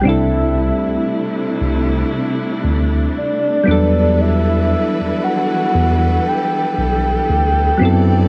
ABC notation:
X:1
M:4/4
L:1/16
Q:"Swing 16ths" 1/4=58
K:Em
V:1 name="Soft synth lead"
e8 z4 d4 | e4 f4 g2 g6 |]
V:2 name="String section"
[C,A,DE]12- [C,A,DE]2 [E,EAB]2- | [E,EAB]12- [E,EAB]2 [F,DEd]2 |]
V:3 name="Synth keys"
[G,CDEA]12- [G,CDEA]2 [F,G,B,DA]2- | [F,G,B,DA]12- [F,G,B,DA]2 [F,B,CEA]2 |]
V:4 name="Tine electric piano" clef=bass
C,,3 C,, z2 C,,2 z2 D,,2 z2 E,,2- | E,,3 E,, z2 E,,2 z2 B,,,2 D,,2 F,,2 |]